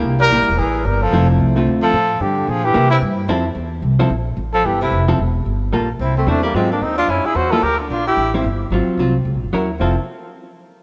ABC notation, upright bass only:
X:1
M:4/4
L:1/8
Q:"Swing" 1/4=221
K:F
V:1 name="Upright bass" clef=bass
C,,2 (3B,,, G,,, E,,, A,,,2 G,,,2 | F,,,2 C,,2 D,,2 A,,2 | G,,2 B,,2 C,2 G,,2 | F,,2 E,,2 C,,2 B,,,2 |
A,,,2 G,,,2 F,,,2 E,,,2 | G,,,2 B,,,2 C,,2 E,,2 | _A,,2 _E,,2 _G,, z _F,,2 | D,,2 B,,,2 A,,,2 G,,,2 |
_A,,, z C,,2 (3_D,, B,,, _G,,, _E,,2 | F,,, z6 z |]